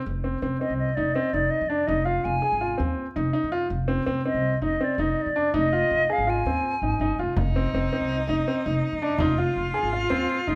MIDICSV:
0, 0, Header, 1, 6, 480
1, 0, Start_track
1, 0, Tempo, 365631
1, 68, Time_signature, 5, 2, 24, 8
1, 13851, End_track
2, 0, Start_track
2, 0, Title_t, "Flute"
2, 0, Program_c, 0, 73
2, 789, Note_on_c, 0, 75, 65
2, 1011, Note_off_c, 0, 75, 0
2, 1024, Note_on_c, 0, 75, 61
2, 1250, Note_on_c, 0, 74, 64
2, 1269, Note_off_c, 0, 75, 0
2, 1501, Note_on_c, 0, 75, 67
2, 1521, Note_off_c, 0, 74, 0
2, 1749, Note_on_c, 0, 74, 71
2, 1769, Note_off_c, 0, 75, 0
2, 1978, Note_on_c, 0, 75, 65
2, 1998, Note_off_c, 0, 74, 0
2, 2212, Note_on_c, 0, 74, 72
2, 2231, Note_off_c, 0, 75, 0
2, 2454, Note_on_c, 0, 75, 78
2, 2473, Note_off_c, 0, 74, 0
2, 2689, Note_on_c, 0, 77, 72
2, 2709, Note_off_c, 0, 75, 0
2, 2948, Note_on_c, 0, 80, 82
2, 2967, Note_off_c, 0, 77, 0
2, 3667, Note_off_c, 0, 80, 0
2, 5594, Note_on_c, 0, 75, 67
2, 6037, Note_off_c, 0, 75, 0
2, 6078, Note_on_c, 0, 75, 68
2, 6354, Note_on_c, 0, 74, 66
2, 6374, Note_off_c, 0, 75, 0
2, 6587, Note_on_c, 0, 75, 64
2, 6607, Note_off_c, 0, 74, 0
2, 6709, Note_off_c, 0, 75, 0
2, 6709, Note_on_c, 0, 75, 57
2, 6850, Note_on_c, 0, 74, 70
2, 6869, Note_off_c, 0, 75, 0
2, 7297, Note_off_c, 0, 74, 0
2, 7321, Note_on_c, 0, 75, 88
2, 8043, Note_on_c, 0, 77, 76
2, 8063, Note_off_c, 0, 75, 0
2, 8267, Note_on_c, 0, 80, 74
2, 8287, Note_off_c, 0, 77, 0
2, 9446, Note_off_c, 0, 80, 0
2, 13851, End_track
3, 0, Start_track
3, 0, Title_t, "Cello"
3, 0, Program_c, 1, 42
3, 9672, Note_on_c, 1, 63, 64
3, 12073, Note_on_c, 1, 65, 79
3, 12093, Note_off_c, 1, 63, 0
3, 13851, Note_off_c, 1, 65, 0
3, 13851, End_track
4, 0, Start_track
4, 0, Title_t, "Grand piano"
4, 0, Program_c, 2, 0
4, 315, Note_on_c, 2, 60, 58
4, 489, Note_off_c, 2, 60, 0
4, 556, Note_on_c, 2, 60, 60
4, 730, Note_off_c, 2, 60, 0
4, 801, Note_on_c, 2, 60, 56
4, 1150, Note_off_c, 2, 60, 0
4, 1274, Note_on_c, 2, 63, 62
4, 1448, Note_off_c, 2, 63, 0
4, 1516, Note_on_c, 2, 60, 66
4, 1690, Note_off_c, 2, 60, 0
4, 1757, Note_on_c, 2, 63, 55
4, 2107, Note_off_c, 2, 63, 0
4, 2228, Note_on_c, 2, 62, 66
4, 2404, Note_off_c, 2, 62, 0
4, 2462, Note_on_c, 2, 63, 63
4, 2641, Note_off_c, 2, 63, 0
4, 2697, Note_on_c, 2, 65, 63
4, 3055, Note_off_c, 2, 65, 0
4, 3178, Note_on_c, 2, 68, 58
4, 3358, Note_off_c, 2, 68, 0
4, 3424, Note_on_c, 2, 65, 54
4, 3602, Note_off_c, 2, 65, 0
4, 3645, Note_on_c, 2, 60, 58
4, 4007, Note_off_c, 2, 60, 0
4, 4147, Note_on_c, 2, 63, 60
4, 4324, Note_off_c, 2, 63, 0
4, 4376, Note_on_c, 2, 63, 73
4, 4557, Note_off_c, 2, 63, 0
4, 4619, Note_on_c, 2, 65, 75
4, 4799, Note_off_c, 2, 65, 0
4, 5091, Note_on_c, 2, 60, 67
4, 5274, Note_off_c, 2, 60, 0
4, 5335, Note_on_c, 2, 60, 70
4, 5516, Note_off_c, 2, 60, 0
4, 5586, Note_on_c, 2, 60, 60
4, 5940, Note_off_c, 2, 60, 0
4, 6066, Note_on_c, 2, 63, 60
4, 6242, Note_off_c, 2, 63, 0
4, 6309, Note_on_c, 2, 60, 59
4, 6484, Note_off_c, 2, 60, 0
4, 6554, Note_on_c, 2, 63, 64
4, 6905, Note_off_c, 2, 63, 0
4, 7035, Note_on_c, 2, 62, 69
4, 7208, Note_off_c, 2, 62, 0
4, 7272, Note_on_c, 2, 63, 73
4, 7446, Note_off_c, 2, 63, 0
4, 7517, Note_on_c, 2, 65, 60
4, 7867, Note_off_c, 2, 65, 0
4, 8003, Note_on_c, 2, 68, 60
4, 8173, Note_off_c, 2, 68, 0
4, 8233, Note_on_c, 2, 65, 57
4, 8407, Note_off_c, 2, 65, 0
4, 8489, Note_on_c, 2, 60, 56
4, 8834, Note_off_c, 2, 60, 0
4, 8963, Note_on_c, 2, 63, 52
4, 9134, Note_off_c, 2, 63, 0
4, 9201, Note_on_c, 2, 63, 65
4, 9372, Note_off_c, 2, 63, 0
4, 9442, Note_on_c, 2, 65, 65
4, 9613, Note_off_c, 2, 65, 0
4, 9923, Note_on_c, 2, 60, 64
4, 10094, Note_off_c, 2, 60, 0
4, 10168, Note_on_c, 2, 60, 64
4, 10337, Note_off_c, 2, 60, 0
4, 10406, Note_on_c, 2, 60, 57
4, 10753, Note_off_c, 2, 60, 0
4, 10884, Note_on_c, 2, 63, 67
4, 11054, Note_off_c, 2, 63, 0
4, 11129, Note_on_c, 2, 60, 66
4, 11297, Note_off_c, 2, 60, 0
4, 11367, Note_on_c, 2, 63, 52
4, 11714, Note_off_c, 2, 63, 0
4, 11844, Note_on_c, 2, 62, 68
4, 12015, Note_off_c, 2, 62, 0
4, 12078, Note_on_c, 2, 63, 80
4, 12251, Note_off_c, 2, 63, 0
4, 12314, Note_on_c, 2, 65, 63
4, 12666, Note_off_c, 2, 65, 0
4, 12787, Note_on_c, 2, 68, 62
4, 12964, Note_off_c, 2, 68, 0
4, 13032, Note_on_c, 2, 65, 61
4, 13207, Note_off_c, 2, 65, 0
4, 13260, Note_on_c, 2, 60, 69
4, 13617, Note_off_c, 2, 60, 0
4, 13749, Note_on_c, 2, 63, 67
4, 13851, Note_off_c, 2, 63, 0
4, 13851, End_track
5, 0, Start_track
5, 0, Title_t, "Upright bass"
5, 0, Program_c, 3, 32
5, 83, Note_on_c, 3, 29, 76
5, 457, Note_off_c, 3, 29, 0
5, 552, Note_on_c, 3, 29, 71
5, 741, Note_off_c, 3, 29, 0
5, 916, Note_on_c, 3, 36, 60
5, 1198, Note_off_c, 3, 36, 0
5, 1282, Note_on_c, 3, 29, 68
5, 1466, Note_off_c, 3, 29, 0
5, 1750, Note_on_c, 3, 29, 76
5, 1939, Note_off_c, 3, 29, 0
5, 2114, Note_on_c, 3, 41, 72
5, 2396, Note_off_c, 3, 41, 0
5, 2473, Note_on_c, 3, 29, 81
5, 2851, Note_off_c, 3, 29, 0
5, 2953, Note_on_c, 3, 29, 75
5, 3140, Note_off_c, 3, 29, 0
5, 3310, Note_on_c, 3, 32, 63
5, 3593, Note_off_c, 3, 32, 0
5, 3669, Note_on_c, 3, 39, 76
5, 3858, Note_off_c, 3, 39, 0
5, 4152, Note_on_c, 3, 29, 83
5, 4340, Note_off_c, 3, 29, 0
5, 4512, Note_on_c, 3, 41, 68
5, 4795, Note_off_c, 3, 41, 0
5, 4859, Note_on_c, 3, 29, 81
5, 5242, Note_off_c, 3, 29, 0
5, 5344, Note_on_c, 3, 29, 66
5, 5535, Note_off_c, 3, 29, 0
5, 5698, Note_on_c, 3, 36, 63
5, 5986, Note_off_c, 3, 36, 0
5, 6059, Note_on_c, 3, 29, 67
5, 6251, Note_off_c, 3, 29, 0
5, 6538, Note_on_c, 3, 29, 76
5, 6731, Note_off_c, 3, 29, 0
5, 6904, Note_on_c, 3, 41, 60
5, 7190, Note_off_c, 3, 41, 0
5, 7271, Note_on_c, 3, 29, 83
5, 7648, Note_off_c, 3, 29, 0
5, 7751, Note_on_c, 3, 29, 67
5, 7938, Note_off_c, 3, 29, 0
5, 8118, Note_on_c, 3, 32, 65
5, 8398, Note_off_c, 3, 32, 0
5, 8472, Note_on_c, 3, 39, 71
5, 8659, Note_off_c, 3, 39, 0
5, 8950, Note_on_c, 3, 32, 68
5, 9164, Note_off_c, 3, 32, 0
5, 9183, Note_on_c, 3, 31, 66
5, 9400, Note_off_c, 3, 31, 0
5, 9433, Note_on_c, 3, 29, 60
5, 9645, Note_off_c, 3, 29, 0
5, 9670, Note_on_c, 3, 29, 78
5, 10048, Note_off_c, 3, 29, 0
5, 10158, Note_on_c, 3, 29, 74
5, 10343, Note_off_c, 3, 29, 0
5, 10518, Note_on_c, 3, 36, 63
5, 10798, Note_off_c, 3, 36, 0
5, 10874, Note_on_c, 3, 29, 70
5, 11061, Note_off_c, 3, 29, 0
5, 11368, Note_on_c, 3, 29, 80
5, 11549, Note_off_c, 3, 29, 0
5, 11718, Note_on_c, 3, 41, 66
5, 11999, Note_off_c, 3, 41, 0
5, 12077, Note_on_c, 3, 29, 90
5, 12453, Note_off_c, 3, 29, 0
5, 12549, Note_on_c, 3, 29, 71
5, 12738, Note_off_c, 3, 29, 0
5, 12905, Note_on_c, 3, 32, 58
5, 13191, Note_off_c, 3, 32, 0
5, 13276, Note_on_c, 3, 39, 71
5, 13462, Note_off_c, 3, 39, 0
5, 13755, Note_on_c, 3, 29, 78
5, 13851, Note_off_c, 3, 29, 0
5, 13851, End_track
6, 0, Start_track
6, 0, Title_t, "Frame drum"
6, 9670, Note_on_c, 9, 64, 55
6, 9801, Note_off_c, 9, 64, 0
6, 10864, Note_on_c, 9, 64, 39
6, 10995, Note_off_c, 9, 64, 0
6, 12058, Note_on_c, 9, 64, 60
6, 12189, Note_off_c, 9, 64, 0
6, 12542, Note_on_c, 9, 64, 18
6, 12673, Note_off_c, 9, 64, 0
6, 13023, Note_on_c, 9, 64, 16
6, 13155, Note_off_c, 9, 64, 0
6, 13266, Note_on_c, 9, 64, 42
6, 13397, Note_off_c, 9, 64, 0
6, 13851, End_track
0, 0, End_of_file